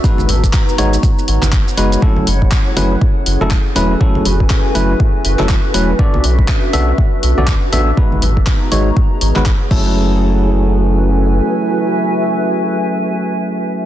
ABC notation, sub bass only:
X:1
M:4/4
L:1/16
Q:"Swing 16ths" 1/4=121
K:F#dor
V:1 name="Sub bass" clef=bass
z G,,, G,,, z3 G,,, z3 G,,, G,,, z2 F,,, z | z F,,, F,,, z3 F,,, z3 F,,, F,,, z2 E,,, z | z F,,, F,,, z3 F,,, z3 F,,, F,,, z2 E,,, z | z B,,, B,,, z3 B,,, z3 B,,, B,,, z2 A,,, z |
z G,,, G,,, z3 G,,, z3 G,,, G,,, z2 F,,,2- | F,,,12 z4 | z16 |]